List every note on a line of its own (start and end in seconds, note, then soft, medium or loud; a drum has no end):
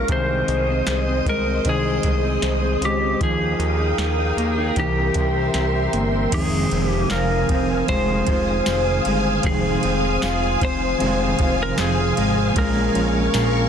0.00 1.26 G#3 medium
0.00 0.17 C#4 medium
0.08 0.43 C2 medium
0.08 1.65 D#3 medium
0.08 0.48 G#4 medium
0.08 3.18 C5 medium
0.08 1.29 C5 medium
0.08 3.18 D#5 medium
0.08 3.18 D#6 medium
0.08 kick loud
0.08 closed hi-hat medium
0.29 0.68 C4 medium
0.48 0.82 C2 loud
0.48 0.87 G#4 medium
0.48 closed hi-hat soft
0.69 1.06 C4 soft
0.87 1.21 C2 medium
0.87 1.65 G#4 medium
0.87 snare loud
0.87 closed hi-hat medium
1.07 1.45 C4 medium
1.26 1.60 C2 loud
1.26 2.82 G#3 medium
1.26 1.68 A#4 medium
1.26 kick medium
1.26 closed hi-hat medium
1.46 1.84 C4 medium
1.65 1.99 C2 loud
1.65 3.21 D#3 medium
1.65 2.03 G#4 medium
1.65 kick medium
1.65 closed hi-hat medium
1.69 2.85 G#4 medium
1.85 2.23 C4 medium
2.03 2.38 C2 loud
2.03 2.43 G#4 medium
2.03 kick medium
2.03 closed hi-hat medium
2.24 2.62 C4 medium
2.42 2.77 C2 medium
2.42 snare loud
2.42 closed hi-hat medium
2.63 3.01 C4 medium
2.81 3.16 C#2 medium
2.81 3.29 G#3 medium
2.81 3.23 G4 medium
2.81 closed hi-hat medium
3.02 3.29 C4 medium
3.19 3.55 D#2 medium
3.19 4.76 F3 medium
3.19 6.29 A#4 medium
3.19 4.74 F5 medium
3.19 6.28 G5 medium
3.19 4.74 D#6 medium
3.19 kick loud
3.19 closed hi-hat medium
3.23 4.79 G#4 medium
3.41 3.78 D#4 soft
3.59 3.94 D#2 loud
3.59 closed hi-hat soft
3.80 4.17 D#4 medium
3.98 4.33 D#2 loud
3.98 snare loud
3.98 closed hi-hat medium
4.18 4.57 D#4 medium
4.37 4.72 D#2 medium
4.37 4.85 A#3 medium
4.37 closed hi-hat medium
4.58 4.85 D#4 medium
4.76 5.11 C2 loud
4.76 6.33 E3 medium
4.76 5.14 G4 medium
4.76 5.91 G4 medium
4.76 6.31 E5 medium
4.76 6.31 C6 medium
4.76 kick medium
4.76 closed hi-hat medium
4.96 5.34 C4 soft
5.14 5.50 C2 loud
5.14 5.53 G4 medium
5.14 kick medium
5.14 closed hi-hat medium
5.35 5.73 C4 soft
5.54 5.89 C2 medium
5.54 6.40 G4 medium
5.54 snare medium
5.54 closed hi-hat medium
5.73 6.13 C4 medium
5.93 6.28 G1 medium
5.93 6.40 A#3 medium
5.93 closed hi-hat medium
6.13 6.72 C4 medium
6.29 6.67 F1 medium
6.29 7.85 F2 medium
6.29 7.86 C3 medium
6.29 9.44 D#3 medium
6.29 7.87 D#3 medium
6.29 12.52 C5 medium
6.29 13.69 F5 medium
6.29 13.69 G#5 medium
6.29 12.52 D#6 medium
6.29 kick loud
6.29 crash loud
6.29 ride medium
6.34 7.88 G#3 medium
6.34 7.88 C4 medium
6.34 6.89 G#4 medium
6.34 7.90 G#4 medium
6.71 7.06 F1 loud
6.71 7.49 C4 medium
6.71 ride soft
6.89 7.11 G4 medium
7.10 7.45 F1 loud
7.10 8.27 F4 medium
7.10 7.89 A#4 medium
7.10 snare loud
7.10 ride medium
7.10 tambourine medium
7.49 7.83 F1 loud
7.49 8.66 C4 medium
7.49 kick medium
7.49 ride soft
7.86 8.23 F1 loud
7.86 8.26 F2 medium
7.86 8.27 C3 medium
7.86 8.27 D#3 medium
7.86 8.27 G#3 medium
7.86 9.06 G#3 medium
7.86 8.26 C4 medium
7.86 9.02 C5 loud
7.86 kick medium
7.86 ride medium
7.90 8.24 G#4 medium
8.25 8.62 F1 medium
8.25 9.45 G#3 soft
8.25 9.44 C4 soft
8.25 10.23 F4 medium
8.25 9.47 G#4 medium
8.25 kick loud
8.25 ride soft
8.30 9.44 D#3 soft
8.66 9.01 F1 loud
8.66 9.82 C4 medium
8.66 snare loud
8.66 ride medium
8.66 tambourine medium
9.05 9.40 G1 medium
9.05 11.00 G#3 medium
9.05 ride soft
9.43 9.79 F1 loud
9.43 9.83 F2 medium
9.43 9.83 C3 medium
9.43 12.56 D#3 medium
9.43 9.84 D#3 medium
9.43 9.84 G#3 medium
9.43 9.83 C4 medium
9.43 10.66 G#4 medium
9.43 kick loud
9.43 ride medium
9.47 9.81 G#4 loud
9.82 10.18 F1 loud
9.82 11.02 G#3 soft
9.82 10.61 C4 medium
9.82 11.00 C4 soft
9.82 11.05 G#4 soft
9.82 ride soft
9.87 11.00 D#3 soft
10.22 10.57 F1 loud
10.22 11.39 F4 medium
10.22 snare loud
10.22 ride medium
10.22 tambourine medium
10.61 10.96 F1 loud
10.61 11.78 C4 medium
10.61 11.62 C5 loud
10.61 kick loud
10.61 ride medium
10.98 11.35 F1 loud
10.98 12.55 F2 medium
10.98 12.53 C3 medium
10.98 12.56 D#3 medium
10.98 12.17 G#3 medium
10.98 ride medium
11.03 12.58 G#3 medium
11.03 12.58 C4 medium
11.03 12.61 G#4 medium
11.39 11.74 F1 loud
11.39 13.34 F4 medium
11.39 kick loud
11.39 ride soft
11.63 11.80 A#4 medium
11.78 12.13 F1 loud
11.78 12.64 C4 medium
11.78 12.38 G#4 loud
11.78 snare loud
11.78 ride medium
11.78 tambourine medium
12.17 12.52 G#1 medium
12.17 12.56 G#3 medium
12.17 ride soft
12.53 12.90 A#1 medium
12.53 13.69 A#2 medium
12.53 13.69 F3 medium
12.53 13.69 G#3 medium
12.53 13.69 A#4 medium
12.53 13.69 C#6 medium
12.53 kick loud
12.53 ride medium
12.58 13.69 G#3 medium
12.58 13.69 C#4 medium
12.58 13.69 G#4 medium
12.58 13.69 A#4 loud
12.95 13.29 A#1 loud
12.95 13.69 C#4 medium
12.95 ride soft
13.34 13.68 A#1 loud
13.34 13.69 F4 medium
13.34 snare loud
13.34 ride medium
13.34 tambourine medium